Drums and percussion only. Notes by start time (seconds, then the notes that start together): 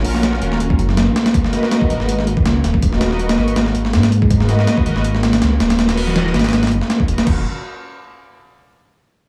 0.05 open hi-hat
0.15 snare
0.23 snare, closed hi-hat
0.33 snare
0.42 closed hi-hat
0.52 snare
0.60 closed hi-hat
0.70 kick
0.79 closed hi-hat
0.89 snare
0.97 snare, closed hi-hat
1.16 snare, closed hi-hat
1.26 snare, closed hi-hat
1.34 kick, closed hi-hat
1.44 snare
1.53 snare, closed hi-hat
1.63 snare
1.71 snare, closed hi-hat
1.81 kick
1.90 closed hi-hat
2.00 snare
2.09 closed hi-hat
2.19 snare
2.27 closed hi-hat
2.37 kick
2.46 snare, closed hi-hat
2.64 snare, closed hi-hat
2.74 kick
2.82 kick, closed hi-hat
2.93 snare
3.01 snare, closed hi-hat
3.11 snare
3.19 closed hi-hat
3.29 snare, closed hi-hat
3.38 snare
3.48 closed hi-hat
3.56 snare, closed hi-hat
3.66 snare
3.75 closed hi-hat
3.85 snare
3.93 snare, closed hi-hat
4.03 snare, closed hi-hat
4.12 closed hi-hat
4.22 kick
4.30 kick, closed hi-hat
4.40 snare
4.49 snare, closed hi-hat
4.59 snare
4.67 snare, closed hi-hat
4.78 kick
4.86 closed hi-hat
4.96 snare
5.04 closed hi-hat
5.15 snare
5.23 snare, closed hi-hat
5.33 snare, closed hi-hat
5.42 snare, closed hi-hat
5.60 snare, closed hi-hat
5.70 snare, closed hi-hat
5.79 snare, closed hi-hat
5.89 snare, closed hi-hat
5.97 open hi-hat
6.07 snare
6.16 snare, closed hi-hat
6.26 snare
6.34 snare, closed hi-hat
6.39 snare, closed hi-hat
6.44 snare, closed hi-hat
6.49 snare, closed hi-hat
6.53 snare, closed hi-hat
6.63 snare, closed hi-hat
6.67 snare, closed hi-hat
6.71 closed hi-hat
6.81 snare
6.90 snare, closed hi-hat
7.00 kick
7.08 closed hi-hat
7.18 snare, closed hi-hat
7.27 kick, crash